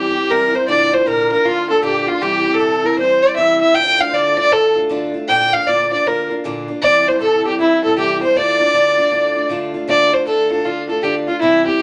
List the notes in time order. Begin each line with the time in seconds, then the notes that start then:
Already playing: E3 G3 C4 E4 G4
0.15 G3 C4 E4
0.29 C3 E3 G3 C4 E4 A#4
0.54 G3 C4 E4 C5
0.67 A#2 D3 A#3 D4 F4 D5
0.92 A#3 D4 F4 C5
1.06 A#2 D3 A#3 D4 F4 A#4
1.30 A#3 D4 F4 A#4
1.44 D3 A#3 D4 F4
1.68 A#3 D4 F4 A4
1.82 A#2 D3 A#3 D4 F4 G4
2.06 A#3 D4 F4
2.21 C3 E3 G3 C4 E4 G4
2.45 G3 C4 E4
2.53 A4
2.59 C3 E3 G3 C4 E4
2.84 G3 C4 E4 A#4
2.98 E3 G3 C4 E4 C5
3.22 G3 E4 D5
3.36 C3 E3 G3 C4 E4 E5
3.61 G3 C4 E4 E5
3.75 D3 A3 D4 F4 G5
3.99 A3 D4 F4 F5
4.09 D3 C5
4.13 A3 D4 F4 D5
4.37 A3 D4 F4 D5
4.50 D3 A3 F4 A4
4.75 A3 D4 F4
4.89 D3 A3 D4 F4
5.14 A3 D4 F4
5.28 A#2 D3 A#3 D4 F4 G5
5.53 A#3 D4 F4 F5
5.67 A#2 D3 A#3 D4 F4 D5
5.91 A#3 D4 F4 D5
6.05 D3 A#3 D4 F4 A#4
6.31 A#3 D4 F4
6.44 A#2 D3 A#3 D4 F4
6.68 A#3 D4 F4
6.82 C3 E3 G3 C4 E4 D5
7.06 G3 C4 E4 C5
7.20 C3 E3 G3 C4 E4 A4
7.45 G3 C4 E4 G4
7.58 E3 G3 C4 E4
7.83 G3 C4 E4 A4
7.96 C3 E3 G3 C4 E4 G4
8.22 G3 C4 E4 C5
8.35 D3 A3 D4 F4 D5
8.60 A3 D4 F4
8.73 D3 A3 D4 F4
8.97 A3 D4 F4
9.11 D3 A3 D4 F4
9.36 A3 D4 F4
9.49 D3 A3 D4 F4
9.74 A3 D4 F4
9.87 D3 A3 D4 F4 D5
10.12 A3 D4 F4 C5
10.26 D3 A3 D4 F4 A4
10.51 A3 D4 F4 A4
10.65 D3 A3 D4 F4
10.89 A3 D4 F4 A4
11.03 D3 A3 D4 F4 G4
11.27 A3 D4 F4
11.41 C3 E3 G3 C4 E4
11.66 G3 C4 E4 G4